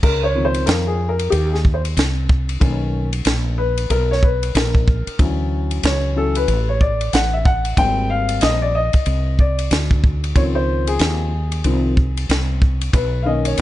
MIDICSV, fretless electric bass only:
0, 0, Header, 1, 3, 480
1, 0, Start_track
1, 0, Tempo, 645161
1, 24, Time_signature, 4, 2, 24, 8
1, 10127, End_track
2, 0, Start_track
2, 0, Title_t, "Fretless electric bass"
2, 0, Program_c, 0, 35
2, 22, Note_on_c, 0, 37, 110
2, 479, Note_off_c, 0, 37, 0
2, 504, Note_on_c, 0, 41, 92
2, 960, Note_off_c, 0, 41, 0
2, 985, Note_on_c, 0, 39, 90
2, 1440, Note_off_c, 0, 39, 0
2, 1463, Note_on_c, 0, 36, 86
2, 1919, Note_off_c, 0, 36, 0
2, 1942, Note_on_c, 0, 35, 112
2, 2399, Note_off_c, 0, 35, 0
2, 2422, Note_on_c, 0, 34, 91
2, 2879, Note_off_c, 0, 34, 0
2, 2901, Note_on_c, 0, 35, 89
2, 3358, Note_off_c, 0, 35, 0
2, 3383, Note_on_c, 0, 34, 91
2, 3751, Note_off_c, 0, 34, 0
2, 3864, Note_on_c, 0, 38, 119
2, 4320, Note_off_c, 0, 38, 0
2, 4341, Note_on_c, 0, 37, 101
2, 4799, Note_off_c, 0, 37, 0
2, 4820, Note_on_c, 0, 33, 90
2, 5278, Note_off_c, 0, 33, 0
2, 5305, Note_on_c, 0, 33, 82
2, 5760, Note_off_c, 0, 33, 0
2, 5781, Note_on_c, 0, 32, 113
2, 6239, Note_off_c, 0, 32, 0
2, 6267, Note_on_c, 0, 34, 99
2, 6633, Note_off_c, 0, 34, 0
2, 6744, Note_on_c, 0, 36, 90
2, 7200, Note_off_c, 0, 36, 0
2, 7223, Note_on_c, 0, 38, 85
2, 7680, Note_off_c, 0, 38, 0
2, 7704, Note_on_c, 0, 37, 108
2, 8160, Note_off_c, 0, 37, 0
2, 8184, Note_on_c, 0, 39, 95
2, 8640, Note_off_c, 0, 39, 0
2, 8663, Note_on_c, 0, 36, 93
2, 9119, Note_off_c, 0, 36, 0
2, 9145, Note_on_c, 0, 36, 82
2, 9600, Note_off_c, 0, 36, 0
2, 9623, Note_on_c, 0, 35, 121
2, 10080, Note_off_c, 0, 35, 0
2, 10127, End_track
3, 0, Start_track
3, 0, Title_t, "Muted fretless electric bass strokes"
3, 3771, Note_on_c, 9, 29, 50
3, 3846, Note_off_c, 9, 29, 0
3, 6651, Note_on_c, 9, 29, 46
3, 6726, Note_off_c, 9, 29, 0
3, 10127, End_track
0, 0, End_of_file